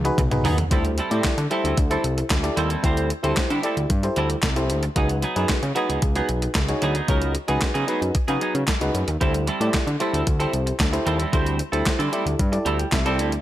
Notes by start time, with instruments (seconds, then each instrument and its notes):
Already playing: analog synth bass C#2
0.05 fm electric piano D#4 F#4 G#4 B4, muted clean electric guitar stroke, closed hi-hat
0.18 analog synth bass B1, muted clean electric guitar stroke, kick, closed hi-hat, mid tom
0.31 fm electric piano D#4 F#4 G#4 B4, muted clean electric guitar stroke, closed hi-hat, mid tom
0.44 analog synth bass D#2, clean electric guitar F#3 B3 D#4 G#4, floor tom, open hi-hat
0.58 muted clean electric guitar stroke, closed hi-hat, floor tom
0.71 analog synth bass D2, clean electric guitar G3 C4 E4 A4, fm electric piano E4 G4 A4 C5, kick, closed hi-hat
0.85 muted clean electric guitar stroke, closed hi-hat
0.98 clean electric guitar G3 C4 E4 A4, closed hi-hat
1.10 analog synth bass A2, clean electric guitar G3 C4 E4 A4, fm electric piano E4 G4 A4 D5, closed hi-hat
1.24 analog synth bass D3, muted clean electric guitar stroke, kick, snare, clap, closed hi-hat
1.38 analog synth bass D3, muted clean electric guitar stroke, closed hi-hat
1.50 clean electric guitar G3 C4 E4 A4, fm electric piano E4 G4 A4 C5, closed hi-hat
1.64 analog synth bass D2, clean electric guitar G3 C4 E4 A4, closed hi-hat
1.77 analog synth bass D2, muted clean electric guitar stroke, kick, closed hi-hat
1.90 clean electric guitar G3 C4 E4 A4, fm electric piano E4 G4 A4 C5, closed hi-hat
2.04 analog synth bass C2, muted clean electric guitar stroke, closed hi-hat
2.18 muted clean electric guitar stroke, closed hi-hat
2.30 analog synth bass D2, muted clean electric guitar stroke, kick, snare, clap, closed hi-hat
2.43 fm electric piano E4 G4 A4 D5, muted clean electric guitar stroke, closed hi-hat
2.57 analog synth bass D#2, clean electric guitar G3 C4 E4 A4, closed hi-hat
2.70 clean electric guitar G3 C4 E4 A4, closed hi-hat
2.83 analog synth bass D2, clean electric guitar G3 C4 E4 C5, fm electric piano E4 G4 A4 C5, kick, closed hi-hat
2.97 closed hi-hat
3.10 muted clean electric guitar stroke, closed hi-hat
3.23 analog synth bass D2, clean electric guitar G3 C4 E4 A4, fm electric piano E4 G4 A4 C5, closed hi-hat
3.36 analog synth bass D3, muted clean electric guitar stroke, kick, snare, clap, closed hi-hat
3.50 analog synth bass D3, clean electric guitar G3 C4 E4 A4, closed hi-hat
3.63 clean electric guitar G3 C4 E4 A4, fm electric piano E4 G4 A4 D5, closed hi-hat
3.77 analog synth bass D2, muted clean electric guitar stroke, closed hi-hat
3.90 analog synth bass G2, kick, closed hi-hat
4.03 fm electric piano E4 G4 A4 C5, muted clean electric guitar stroke, closed hi-hat
4.16 analog synth bass D2, clean electric guitar G3 C4 E4 A4, closed hi-hat
4.30 muted clean electric guitar stroke, closed hi-hat
4.42 analog synth bass C2, muted clean electric guitar stroke, kick, snare, clap, closed hi-hat
4.56 fm electric piano E4 G4 A4 C5, muted clean electric guitar stroke, closed hi-hat
4.70 analog synth bass D2, closed hi-hat
4.83 muted clean electric guitar stroke, closed hi-hat
4.96 analog synth bass C#2, clean electric guitar F#3 B3 D#4 G#4, fm electric piano D#4 F#4 G#4 B4, kick, closed hi-hat
5.09 muted clean electric guitar stroke, closed hi-hat
5.22 clean electric guitar F#3 B3 D#4 G#4, closed hi-hat
5.36 analog synth bass F#2, clean electric guitar F#3 B3 D#4 G#4, fm electric piano D#4 F#4 G#4 B4, closed hi-hat
5.49 analog synth bass C#3, muted clean electric guitar stroke, kick, snare, clap, closed hi-hat
5.63 analog synth bass C#3, muted clean electric guitar stroke, closed hi-hat
5.75 clean electric guitar F#3 B3 D#4 G#4, fm electric piano D#4 F#4 G#4 B4, closed hi-hat
5.89 analog synth bass C#2, clean electric guitar F#3 B3 D#4 G#4, closed hi-hat
6.02 analog synth bass C#2, muted clean electric guitar stroke, kick, closed hi-hat
6.15 clean electric guitar F#3 B3 D#4 G#4, fm electric piano D#4 F#4 G#4 B4, closed hi-hat
6.29 analog synth bass B1, muted clean electric guitar stroke, closed hi-hat
6.42 muted clean electric guitar stroke, closed hi-hat
6.55 analog synth bass C#2, muted clean electric guitar stroke, kick, snare, clap, closed hi-hat
6.68 fm electric piano D#4 F#4 G#4 C#5, muted clean electric guitar stroke, closed hi-hat
6.82 analog synth bass D2, clean electric guitar F#3 B3 D#4 G#4, closed hi-hat
6.95 clean electric guitar F#3 B3 D#4 G#4, closed hi-hat
7.08 analog synth bass C#2, clean electric guitar F#3 B3 D#4 A#4, fm electric piano D#4 F#4 G#4 C#5, kick, closed hi-hat
7.22 closed hi-hat
7.35 muted clean electric guitar stroke, closed hi-hat
7.48 analog synth bass C#2, clean electric guitar F#3 B3 D#4 G#4, fm electric piano D#4 F#4 G#4 B4, closed hi-hat
7.61 analog synth bass C#3, muted clean electric guitar stroke, kick, snare, clap, closed hi-hat
7.74 analog synth bass C#3, clean electric guitar F#3 B3 D#4 G#4, closed hi-hat
7.88 clean electric guitar F#3 B3 D#4 G#4, fm electric piano D#4 F#4 G#4 B4, closed hi-hat
8.01 analog synth bass F#2, muted clean electric guitar stroke, closed hi-hat
8.15 muted clean electric guitar stroke, kick, closed hi-hat
8.28 analog synth bass C#3, clean electric guitar F#3 B3 D#4 G#4, fm electric piano D#4 F#4 G#4 B4, closed hi-hat
8.41 clean electric guitar F#3 B3 D#4 G#4, closed hi-hat
8.54 analog synth bass C#3, muted clean electric guitar stroke, closed hi-hat
8.68 muted clean electric guitar stroke, kick, snare, clap, closed hi-hat
8.81 analog synth bass C#2, fm electric piano D#4 F#4 G#4 B4, muted clean electric guitar stroke, closed hi-hat
8.94 analog synth bass F#2, closed hi-hat
9.08 analog synth bass D#2, muted clean electric guitar stroke, closed hi-hat
9.21 analog synth bass D2, clean electric guitar G3 C4 E4 A4, fm electric piano E4 G4 A4 C5, kick, closed hi-hat
9.34 muted clean electric guitar stroke, closed hi-hat
9.47 clean electric guitar G3 C4 E4 A4, closed hi-hat
9.60 analog synth bass A2, clean electric guitar G3 C4 E4 A4, fm electric piano E4 G4 A4 D5, closed hi-hat
9.74 analog synth bass D3, muted clean electric guitar stroke, kick, snare, clap, closed hi-hat
9.87 analog synth bass D3, muted clean electric guitar stroke, closed hi-hat
10.00 clean electric guitar G3 C4 E4 A4, fm electric piano E4 G4 A4 C5, closed hi-hat
10.13 analog synth bass D2, clean electric guitar G3 C4 E4 A4, closed hi-hat
10.27 analog synth bass D2, muted clean electric guitar stroke, kick, closed hi-hat
10.39 clean electric guitar G3 C4 E4 A4, fm electric piano E4 G4 A4 C5, closed hi-hat
10.53 analog synth bass C2, muted clean electric guitar stroke, closed hi-hat
10.67 muted clean electric guitar stroke, closed hi-hat
10.80 analog synth bass D2, muted clean electric guitar stroke, kick, snare, clap, closed hi-hat
10.92 fm electric piano E4 G4 A4 C5, muted clean electric guitar stroke, closed hi-hat
11.06 analog synth bass D#2, clean electric guitar G3 C4 E4 A4, closed hi-hat
11.19 clean electric guitar G3 C4 E4 A4, closed hi-hat
11.32 analog synth bass D2, clean electric guitar G3 C4 E4 C5, fm electric piano E4 G4 A4 C5, kick, closed hi-hat
11.46 closed hi-hat
11.59 muted clean electric guitar stroke, closed hi-hat
11.72 analog synth bass D2, clean electric guitar G3 C4 E4 A4, fm electric piano E4 G4 A4 C5, closed hi-hat
11.86 analog synth bass D3, muted clean electric guitar stroke, kick, snare, clap, closed hi-hat
11.99 analog synth bass D3, clean electric guitar G3 C4 E4 A4, closed hi-hat
12.12 clean electric guitar G3 C4 E4 A4, fm electric piano E4 G4 A4 D5, closed hi-hat
12.26 analog synth bass D2, muted clean electric guitar stroke, closed hi-hat
12.39 analog synth bass G2, kick, closed hi-hat
12.52 fm electric piano E4 G4 A4 D5, muted clean electric guitar stroke, closed hi-hat
12.65 analog synth bass D2, clean electric guitar G3 C4 E4 A4, fm electric piano A5, closed hi-hat
12.79 fm electric piano G5, muted clean electric guitar stroke, closed hi-hat
12.92 analog synth bass C2, fm electric piano E5, muted clean electric guitar stroke, kick, snare, clap, closed hi-hat
13.05 clean electric guitar G3 C4 E4 A4, fm electric piano E4 G4 A4 D5, closed hi-hat
13.19 analog synth bass D2, clean electric guitar G3 C4 E4 A4, fm electric piano E5, closed hi-hat
13.32 muted clean electric guitar stroke, closed hi-hat